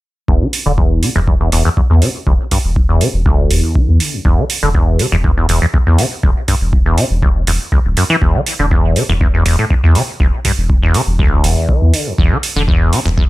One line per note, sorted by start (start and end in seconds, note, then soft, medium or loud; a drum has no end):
0.28 0.39 E1 loud
0.28 0.43 E2 medium
0.28 kick loud
0.41 0.48 E3 loud
0.53 open hi-hat loud
0.66 1.00 E1 medium
0.66 0.73 D3 medium
0.78 1.04 E2 medium
0.78 kick loud
1.03 1.10 D3 medium
1.03 open hi-hat medium
1.16 1.49 E1 medium
1.16 1.20 E2 medium
1.28 1.35 E2 medium
1.28 kick loud
1.40 1.50 E2 medium
1.52 1.63 E1 loud
1.52 1.63 E2 medium
1.52 open hi-hat loud
1.65 1.69 E2 loud
1.77 1.81 E2 medium
1.77 kick loud
1.90 2.03 E2 medium
1.90 2.00 E2 medium
2.02 2.09 D3 medium
2.02 open hi-hat medium
2.27 2.38 E1 loud
2.27 2.34 D2 medium
2.27 kick loud
2.51 2.59 G2 medium
2.51 kick medium
2.51 open hi-hat loud
2.64 2.98 E1 medium
2.76 kick loud
2.89 3.03 E2 medium
3.01 3.08 D3 medium
3.01 open hi-hat medium
3.14 3.48 E1 medium
3.26 3.52 D2 medium
3.26 kick loud
3.51 3.62 E1 loud
3.51 3.77 E2 medium
3.51 open hi-hat loud
3.75 4.02 E3 medium
3.75 kick loud
3.88 3.98 E2 medium
4.00 4.15 D3 medium
4.00 open hi-hat medium
4.13 4.20 E2 medium
4.25 4.36 E1 medium
4.25 4.39 E2 medium
4.25 kick loud
4.38 4.44 E3 loud
4.50 open hi-hat loud
4.63 4.97 E1 medium
4.63 4.69 D3 medium
4.75 5.01 E2 medium
4.75 kick loud
4.99 5.06 D3 medium
4.99 open hi-hat medium
5.12 5.46 E1 medium
5.12 5.16 E2 medium
5.24 5.31 E2 medium
5.24 kick loud
5.37 5.47 E2 medium
5.49 5.60 E1 loud
5.49 5.60 E2 medium
5.49 open hi-hat loud
5.62 5.66 E2 medium
5.74 5.78 E2 medium
5.74 kick loud
5.87 5.97 E2 medium
5.87 6.00 E2 medium
5.98 6.06 D3 medium
5.98 open hi-hat medium
6.23 6.34 E1 medium
6.23 6.30 D2 medium
6.23 kick loud
6.48 6.55 G2 medium
6.48 kick medium
6.48 open hi-hat loud
6.61 6.95 E1 medium
6.73 kick loud
6.86 6.99 E2 medium
6.98 7.05 D3 medium
6.98 open hi-hat medium
7.11 7.44 E1 medium
7.23 7.30 D2 medium
7.23 kick loud
7.47 7.58 E1 loud
7.47 7.52 E2 medium
7.47 open hi-hat loud
7.72 7.79 D2 medium
7.72 kick loud
7.85 7.95 D1 medium
7.97 8.04 F#2 medium
7.97 open hi-hat medium
8.10 8.16 E3 loud
8.22 8.33 E1 loud
8.22 8.36 E2 medium
8.22 kick loud
8.35 8.41 E3 loud
8.46 open hi-hat loud
8.59 8.93 E1 medium
8.59 8.66 D3 medium
8.71 8.97 E2 medium
8.71 kick loud
8.96 9.03 D3 medium
8.96 open hi-hat medium
9.09 9.43 E1 medium
9.09 9.13 E2 medium
9.21 9.28 E2 medium
9.21 kick loud
9.34 9.44 E2 medium
9.46 9.57 E1 loud
9.46 9.56 E2 medium
9.46 open hi-hat loud
9.59 9.65 A2 medium
9.70 9.75 E2 medium
9.70 kick loud
9.83 9.93 E2 loud
9.83 9.97 E2 medium
9.95 10.02 D3 medium
9.95 open hi-hat medium
10.20 10.31 E1 medium
10.20 10.27 D2 medium
10.20 kick loud
10.45 10.52 G2 medium
10.45 kick medium
10.45 open hi-hat loud
10.58 10.92 E1 medium
10.70 kick loud
10.82 10.96 E2 medium
10.94 11.02 D3 medium
10.94 open hi-hat medium
11.07 11.41 E1 medium
11.19 11.46 D2 medium
11.19 kick loud
11.44 11.55 E1 loud
11.44 11.70 E2 medium
11.44 open hi-hat medium
11.69 11.95 E3 medium
11.69 kick loud
11.82 11.92 E2 medium
11.94 12.08 D3 medium
11.94 open hi-hat medium
12.07 12.13 E2 loud
12.18 12.29 E1 loud
12.18 12.33 E2 medium
12.18 kick loud
12.31 12.38 E3 loud
12.43 open hi-hat loud
12.56 12.90 E1 medium
12.56 12.63 D3 medium
12.68 12.94 E2 medium
12.68 kick loud
12.93 13.00 D3 medium
12.93 open hi-hat medium
13.06 13.29 E1 medium
13.06 13.10 E2 loud
13.18 13.25 E2 medium
13.18 kick loud